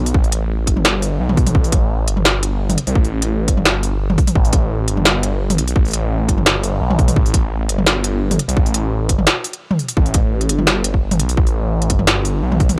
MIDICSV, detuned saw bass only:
0, 0, Header, 1, 2, 480
1, 0, Start_track
1, 0, Tempo, 350877
1, 198, Time_signature, 4, 2, 24, 8
1, 17498, End_track
2, 0, Start_track
2, 0, Title_t, "Detuned saw bass"
2, 0, Program_c, 0, 39
2, 0, Note_on_c, 0, 35, 88
2, 181, Note_off_c, 0, 35, 0
2, 915, Note_on_c, 0, 31, 96
2, 1622, Note_off_c, 0, 31, 0
2, 1640, Note_on_c, 0, 35, 97
2, 2105, Note_off_c, 0, 35, 0
2, 2118, Note_on_c, 0, 33, 107
2, 2841, Note_on_c, 0, 31, 96
2, 2862, Note_off_c, 0, 33, 0
2, 3785, Note_off_c, 0, 31, 0
2, 3926, Note_on_c, 0, 36, 97
2, 4030, Note_off_c, 0, 36, 0
2, 4042, Note_on_c, 0, 33, 102
2, 4761, Note_on_c, 0, 31, 89
2, 4782, Note_off_c, 0, 33, 0
2, 5706, Note_off_c, 0, 31, 0
2, 5958, Note_on_c, 0, 33, 104
2, 6675, Note_on_c, 0, 31, 94
2, 6696, Note_off_c, 0, 33, 0
2, 7637, Note_on_c, 0, 35, 91
2, 7658, Note_off_c, 0, 31, 0
2, 7860, Note_off_c, 0, 35, 0
2, 7876, Note_on_c, 0, 33, 99
2, 8598, Note_on_c, 0, 31, 96
2, 8619, Note_off_c, 0, 33, 0
2, 9304, Note_off_c, 0, 31, 0
2, 9318, Note_on_c, 0, 35, 93
2, 9784, Note_off_c, 0, 35, 0
2, 9800, Note_on_c, 0, 33, 108
2, 10519, Note_on_c, 0, 31, 96
2, 10539, Note_off_c, 0, 33, 0
2, 11464, Note_off_c, 0, 31, 0
2, 11603, Note_on_c, 0, 36, 94
2, 11708, Note_off_c, 0, 36, 0
2, 11720, Note_on_c, 0, 33, 97
2, 12438, Note_on_c, 0, 31, 90
2, 12459, Note_off_c, 0, 33, 0
2, 12678, Note_off_c, 0, 31, 0
2, 13636, Note_on_c, 0, 33, 100
2, 14358, Note_on_c, 0, 31, 94
2, 14378, Note_off_c, 0, 33, 0
2, 15320, Note_on_c, 0, 35, 89
2, 15340, Note_off_c, 0, 31, 0
2, 15541, Note_off_c, 0, 35, 0
2, 15559, Note_on_c, 0, 33, 102
2, 16278, Note_on_c, 0, 31, 91
2, 16299, Note_off_c, 0, 33, 0
2, 16984, Note_off_c, 0, 31, 0
2, 16997, Note_on_c, 0, 35, 94
2, 17463, Note_off_c, 0, 35, 0
2, 17498, End_track
0, 0, End_of_file